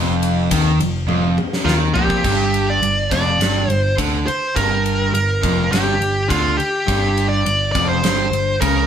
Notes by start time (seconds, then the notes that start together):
Already playing: F1 F2
0.23 ride
0.51 D#2 D#3, kick, ride
0.78 F1 F2, ride
1.07 F1 F2, high tom
1.38 mid tom
1.53 snare
1.65 D#2 D#3 F4, snare
1.94 A#1 A#2 G4, floor tom
2.10 kick
2.24 G1 G2, kick, crash
2.54 ride
2.70 D5
2.81 G1 G2, ride
3.11 F1 F2 D5, kick, ride
3.39 G1 G2, snare, ride
3.68 G1 G2 C5, ride
3.98 D2 D3, kick, ride
4.26 C5, muted picked electric bass stroke, muted overdriven electric guitar stroke, ride
4.55 G1 G2 A#4, kick, ride
4.86 ride
5.13 G1 G2 A#4, ride
5.42 F1 F2, kick, ride
5.70 G1 G2 G4, ride
5.74 snare
6.00 G1 G2, ride
6.28 D2 D3 F4, kick, ride
6.57 G4, muted overdriven electric guitar stroke, muted picked electric bass stroke, ride
6.86 G1 G2, kick, ride
7.18 ride
7.29 D5
7.45 G1 G2, ride
7.72 F1 F2 D5, kick, ride
7.89 C5
8.03 G1 G2, snare, ride
8.32 G1 G2, ride
8.61 C#2 C#3 A#4, kick, ride